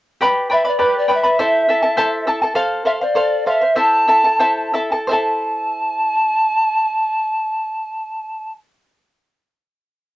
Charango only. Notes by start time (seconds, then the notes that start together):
0.21 G4 B4 D5 G5 B5
0.50 B4 D5 G5 B5
0.65 B4 D5 B5
0.79 G4 B4 D5 G5 B5
1.08 B4 D5 G5 B5
1.23 B4 D5 B5
1.39 E4 A4 C5 E5 A5
1.69 E4 A4 E5 A5
1.82 E4 A4 A5
1.97 E4 A4 C5 E5 A5
2.27 E4 A4 E5 A5
2.42 E4 A4 A5
2.55 A4 C5 F5
2.85 A4 C5 F5
3.01 C5 F5
3.15 A4 C5 F5
3.46 A4 C5 F5
3.61 C5 F5
3.76 E4 A4 C5 E5 A5
4.08 E4 A4 E5 A5
4.24 E4 A4 A5
4.40 E4 A4 C5 E5 A5
4.74 E4 A4 E5 A5
4.92 E4 A4 A5
5.07 E4 C5 E5
5.12 A4 A5